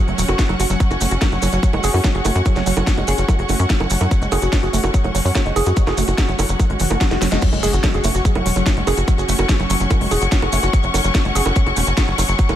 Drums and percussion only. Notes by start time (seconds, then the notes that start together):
0.08 closed hi-hat
0.18 open hi-hat, maracas
0.28 closed hi-hat, high bongo, maracas
0.39 kick, snare, closed hi-hat, maracas
0.49 closed hi-hat, high bongo
0.60 open hi-hat, maracas
0.70 closed hi-hat, maracas
0.80 kick, closed hi-hat, maracas
0.91 closed hi-hat, high bongo, maracas
1.01 open hi-hat, maracas
1.11 closed hi-hat, maracas
1.21 kick, snare, closed hi-hat, high bongo, maracas
1.32 closed hi-hat
1.42 open hi-hat, high bongo, maracas
1.52 closed hi-hat, maracas
1.63 kick, closed hi-hat, maracas
1.73 closed hi-hat, high bongo
1.83 open hi-hat, maracas
1.94 open hi-hat, high bongo, maracas
2.04 kick, snare, closed hi-hat, maracas
2.15 closed hi-hat
2.25 open hi-hat, high bongo, maracas
2.35 closed hi-hat, maracas
2.45 kick, closed hi-hat, high bongo, maracas
2.56 snare, closed hi-hat, maracas
2.66 open hi-hat, maracas
2.77 closed hi-hat, high bongo, maracas
2.87 kick, snare, closed hi-hat, maracas
2.97 closed hi-hat, high bongo
3.07 open hi-hat, maracas
3.18 closed hi-hat, maracas
3.28 kick, closed hi-hat, high bongo, maracas
3.39 closed hi-hat
3.49 open hi-hat, high bongo, maracas
3.59 closed hi-hat, maracas
3.69 kick, snare, closed hi-hat, maracas
3.80 closed hi-hat, high bongo
3.90 open hi-hat, maracas
4.01 closed hi-hat, high bongo, maracas
4.11 kick, closed hi-hat, maracas
4.22 closed hi-hat, maracas
4.32 open hi-hat, high bongo, maracas
4.42 closed hi-hat, maracas
4.53 kick, snare, closed hi-hat, high bongo, maracas
4.63 closed hi-hat
4.73 open hi-hat, maracas
4.84 high bongo, maracas
4.94 kick, closed hi-hat, maracas
5.04 closed hi-hat, high bongo
5.15 open hi-hat, maracas
5.25 open hi-hat, maracas
5.35 kick, snare, high bongo, maracas
5.46 closed hi-hat
5.56 open hi-hat, high bongo, maracas
5.66 closed hi-hat, maracas
5.76 kick, closed hi-hat, maracas
5.87 snare, closed hi-hat, high bongo, maracas
5.97 open hi-hat, maracas
6.08 closed hi-hat, high bongo, maracas
6.18 kick, snare, closed hi-hat, maracas
6.28 closed hi-hat
6.39 open hi-hat, high bongo, maracas
6.49 closed hi-hat, maracas
6.60 kick, closed hi-hat, high bongo, maracas
6.70 closed hi-hat
6.79 open hi-hat, maracas
6.90 closed hi-hat, high bongo, maracas
7.01 kick, snare, closed hi-hat, maracas
7.11 snare, closed hi-hat, high bongo, maracas
7.22 snare, open hi-hat, maracas
7.32 snare, closed hi-hat, maracas
7.42 kick, closed hi-hat, crash, maracas
7.53 closed hi-hat, high bongo, maracas
7.63 open hi-hat, maracas
7.73 closed hi-hat, maracas
7.83 kick, snare, closed hi-hat, high bongo, maracas
7.94 closed hi-hat
8.04 open hi-hat, high bongo, maracas
8.14 closed hi-hat, maracas
8.25 kick, closed hi-hat, maracas
8.35 closed hi-hat, high bongo
8.46 open hi-hat, maracas
8.56 closed hi-hat, high bongo, maracas
8.66 kick, snare, closed hi-hat, maracas
8.77 closed hi-hat
8.87 open hi-hat, high bongo, maracas
8.97 closed hi-hat, maracas
9.08 kick, closed hi-hat, high bongo, maracas
9.18 closed hi-hat, maracas
9.28 open hi-hat, maracas
9.39 closed hi-hat, high bongo, maracas
9.49 kick, snare, closed hi-hat, maracas
9.60 closed hi-hat, high bongo
9.70 open hi-hat, maracas
9.80 closed hi-hat, maracas
9.90 kick, closed hi-hat, high bongo, maracas
10.01 open hi-hat
10.11 open hi-hat, high bongo, maracas
10.22 closed hi-hat, maracas
10.32 kick, snare, closed hi-hat, maracas
10.42 closed hi-hat, high bongo
10.52 open hi-hat, maracas
10.63 closed hi-hat, high bongo, maracas
10.73 kick, closed hi-hat, maracas
10.83 closed hi-hat, maracas
10.94 open hi-hat, high bongo, maracas
11.04 closed hi-hat, maracas
11.15 kick, snare, closed hi-hat, high bongo, maracas
11.25 closed hi-hat
11.35 open hi-hat, maracas
11.46 high bongo, maracas
11.56 kick, closed hi-hat, maracas
11.66 closed hi-hat, high bongo
11.76 open hi-hat, maracas
11.87 closed hi-hat, maracas
11.97 kick, snare, closed hi-hat, high bongo, maracas
12.08 closed hi-hat
12.18 open hi-hat, high bongo, maracas
12.29 closed hi-hat, maracas
12.39 kick, closed hi-hat, maracas
12.49 closed hi-hat, high bongo, maracas